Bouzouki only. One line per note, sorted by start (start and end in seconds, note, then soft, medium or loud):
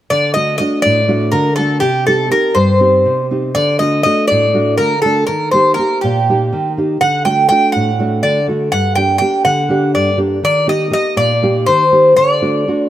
0.10 0.33 D5 medium
0.34 0.57 D#5 medium
0.58 0.82 D#5 medium
0.82 1.29 D5 medium
1.32 1.55 A#4 medium
1.56 1.80 A4 medium
1.80 2.04 G4 medium
2.07 2.30 A4 medium
2.31 2.55 A#4 medium
2.55 3.26 C5 medium
3.55 3.79 D5 loud
3.79 4.02 D#5 medium
4.03 4.27 D#5 medium
4.28 4.77 D5 medium
4.78 5.01 A#4 medium
5.02 5.25 A4 medium
5.27 5.50 A#4 medium
5.51 5.74 C5 medium
5.74 5.98 A#4 medium
6.01 6.71 G4 medium
7.01 7.23 F#5 medium
7.25 7.47 G5 medium
7.49 7.72 G5 medium
7.72 8.24 F#5 medium
8.23 8.46 D5 medium
8.72 8.95 F#5 medium
8.95 9.17 G5 medium
9.18 9.43 G5 medium
9.45 9.91 F#5 medium
9.95 10.18 D5 medium
10.45 10.68 D5 medium
10.69 10.92 D#5 medium
10.93 11.17 D#5 medium
11.17 11.64 D5 medium
11.66 12.13 C5 medium
12.17 12.89 D5 medium